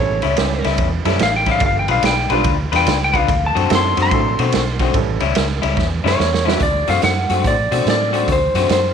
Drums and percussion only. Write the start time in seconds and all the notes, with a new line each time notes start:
0.22 ride
0.37 snare, ride
0.64 snare, ride
0.78 kick, ride
1.05 snare, ride
1.19 snare, ride
1.46 kick, snare, ride
1.60 kick, ride
1.88 ride
2.03 snare, ride
2.30 ride
2.44 kick, ride
2.73 snare, ride
2.87 snare, ride
3.14 kick, ride
3.29 kick, ride
3.56 ride
3.70 snare, ride
3.97 snare, ride
4.11 kick, ride
4.39 ride
4.52 snare, ride
4.79 kick, snare, ride
4.94 kick, ride
5.20 ride
5.35 snare, ride
5.63 ride
5.77 kick, snare
6.06 snare
6.20 snare
6.34 snare
6.48 snare
6.60 kick, closed hi-hat
6.88 snare, closed hi-hat
7.02 snare, closed hi-hat
7.30 closed hi-hat
7.44 kick, closed hi-hat
7.72 closed hi-hat
7.87 snare, closed hi-hat
8.14 closed hi-hat
8.28 kick, closed hi-hat
8.55 snare, closed hi-hat
8.69 snare, closed hi-hat